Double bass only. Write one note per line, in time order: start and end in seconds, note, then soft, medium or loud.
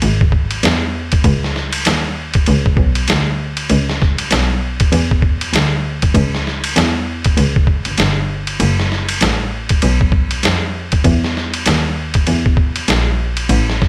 0.03 0.61 G#1 medium
0.64 1.22 E2 medium
1.24 1.83 C#2 medium
1.86 2.44 D#2 medium
2.48 2.77 C#2 medium
2.77 3.07 B1 medium
3.09 3.67 D2 medium
3.70 4.28 C#2 medium
4.31 4.89 B1 medium
4.92 5.50 E2 loud
5.53 6.11 D2 medium
6.15 6.73 C#2 loud
6.76 7.34 E2 medium
7.37 7.84 C#2 medium
7.87 7.96 G1 soft
7.99 8.57 G1 medium
8.60 9.18 F#1 loud
9.22 9.79 A1 medium
9.83 10.41 B1 loud
10.44 11.01 F2 medium
11.04 11.63 E2 loud
11.67 12.24 D#2 medium
12.28 12.85 E2 medium
12.89 13.46 A#1 medium
13.50 13.88 A1 loud